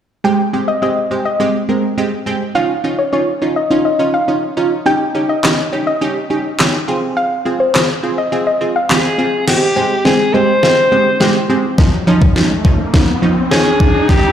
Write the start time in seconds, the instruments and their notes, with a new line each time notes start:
0.24 synth stab G#3 C4 G4, synth pluck G5
0.53 synth stab G#3 C4 G4
0.68 synth pluck D#5
0.82 synth stab G#3 C4 G4, synth pluck D#5
1.11 synth stab G#3 C4 G4
1.25 synth pluck D#5
1.40 synth stab G#3 C4 G4
1.69 synth stab G#3 C4 A#4
1.97 synth stab G#3 C4 G4
2.26 synth stab G#3 C4 G4
2.55 synth stab C#4 D#4 F4, synth pluck F5
2.84 synth stab C#4 D#4 F4
2.99 synth pluck C#5
3.13 synth stab C#4 D#4 F4, synth pluck C#5
3.42 synth stab C#4 D#4 F4
3.56 synth pluck D#5
3.70 synth stab C#4 D#4 F4
3.85 synth pluck D#5
3.99 synth stab C#4 D#4 F4
4.14 synth pluck F5
4.28 synth stab C#4 D#4 F4
4.57 synth stab C#4 D#4 F4
4.86 synth stab C#4 D#4 G4, synth pluck G5
5.15 synth stab C#4 D#4 G4
5.29 synth pluck D#5
5.44 synth stab C#4 D#4 G4, synth pluck D#5, snare, clap
5.72 synth stab C#4 D#4 G4
5.87 synth pluck D#5
6.01 synth stab C#4 D#4 G4
6.30 synth stab C#4 D#4 G4
6.59 synth stab C#4 D#4 G4, snare, clap
6.88 synth stab C4 F4 G#4
7.17 synth pluck F5
7.45 synth stab C4 F4 G#4
7.60 synth pluck C5
7.74 synth stab C4 F4 G#4, synth pluck C5, snare, clap
8.03 synth stab C4 F4 G#4
8.18 synth pluck D#5
8.32 synth stab C4 F4 G#4
8.47 synth pluck D#5
8.61 synth stab C4 F4 G#4
8.76 synth pluck F5
8.90 synth stab C4 F4 G#4, alto saxophone G#4, snare, clap
9.18 synth stab C4 F4 G#4
9.47 synth stab G#3 C4 G4, alto saxophone G4, snare, crash, riser
9.76 synth stab G#3 C4 G4
10.05 synth stab G#3 C4 G4, alto saxophone G#4, snare
10.34 synth stab G#3 C4 G4, alto saxophone C5
10.63 synth stab G#3 C4 F4, snare
10.92 synth stab G#3 C4 G4
11.20 synth stab G#3 C4 G4, snare
11.49 synth stab G#3 C4 G4
11.78 synth stab F3 C#4 D#4, kick, snare
12.07 synth stab F3 C#4 D#4
12.22 kick
12.36 synth stab F3 C#4 D#4, snare
12.65 synth stab F3 C#4 D#4, kick
12.94 synth stab F3 C#4 D#4, kick, snare
13.22 synth stab F3 C#4 D#4
13.51 synth stab F3 C#4 D#4, alto saxophone G#4, snare
13.80 synth stab F3 C#4 D#4, kick
14.09 synth stab G3 C#4 D#4, alto saxophone G4, kick, snare